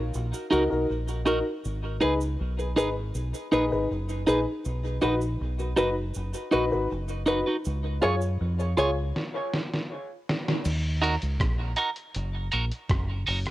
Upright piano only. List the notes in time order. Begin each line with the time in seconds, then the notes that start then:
0.51 D#4 F#4 A#4
0.69 D#4 F#4 A#4
1.25 D#4 F#4 A#4
2.01 D#4 G#4 B4
2.59 G#4 B4
2.76 D#4 G#4 B4
3.52 D#4 G#4 B4
3.71 D#4 G#4 B4
4.27 D#4 G#4 B4
5.01 D#4 F#4 B4
5.59 F#4 B4
5.77 D#4 F#4 B4
6.52 D#4 F#4 B4
6.71 D#4 F#4 B4
7.26 D#4 F#4 B4
8.01 F4 G#4 C#5
8.59 G#4 C#5
8.77 F4 G#4 C#5